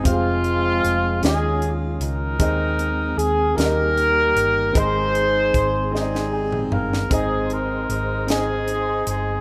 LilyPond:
<<
  \new Staff \with { instrumentName = "Grand piano" } { \time 6/8 \key aes \major \tempo 4. = 51 <c' f' g' aes' f''>4 r8 <des' f' aes' d'' ees''>4 r8 | <c' ees' aes' ees''>4 r8 <bes ees' g' d'' ees''>4 r8 | <c' ees' aes' ees''>4 r8 <c' ees' aes' d'' ees''>4 r8 | <c' ees' aes' ees''>4 r8 <c' ees' aes' ees''>4 r8 | }
  \new Staff \with { instrumentName = "Grand piano" } { \clef bass \time 6/8 \key aes \major r4. ees4. | ees4. ees4. | aes,4. r8 aes''8 f''8 | aes,4. r4. | }
  \new Staff \with { instrumentName = "Horn section" } { \time 6/8 \key aes \major << { f'4. aes'8 r8 bes'8~ | bes'4 aes'8 bes'4. | c''4. aes'4 bes'8 | aes'8 bes'4 aes'4 aes'8 | } \\ { <aes c'>4. <des' f'>4 ees'8~ | ees'4 r8 <ees' g'>4. | <ees' aes'>4. <c' ees'>4. | <c' ees'>8 ees'4 <c' ees'>4. | } >> }
  \new Staff \with { instrumentName = "Tonewheel organ" } { \time 6/8 \key aes \major <c' aes'>4. <des' f'>4. | <c' aes'>4. <bes g'>4. | <c' aes'>2. | <ees'' c'''>2. | }
  \new Staff \with { instrumentName = "Tonewheel organ" } { \clef bass \time 6/8 \key aes \major << { aes2.~ | aes4. g4. | aes2. | c''2. | } \\ { f4. ees4.~ | ees2.~ | ees2. | aes'2. | } >> }
  \new Staff \with { instrumentName = "Fingered electric bass" } { \clef bass \time 6/8 \key aes \major f,,4 f,,8 ees,4 des,8 | ees,4 ees,8 ees,4 g,,8 | aes,,4 aes,,4. g,,8 | aes,,4 aes,,4. g,,8 | }
  \new DrumStaff \with { instrumentName = "Drums" } \drummode { \time 6/8 <hh bd>8 hh8 hh8 <hh sn>8 hh8 hh8 | <hh bd>8 hh8 hh8 <hh sn>8 hh8 hh8 | <hh bd>8 hh8 <hh bd>8 sn16 sn8 toml16 tomfh16 sn16 | <hh bd>8 hh8 hh8 <hh sn>8 hh8 hh8 | }
>>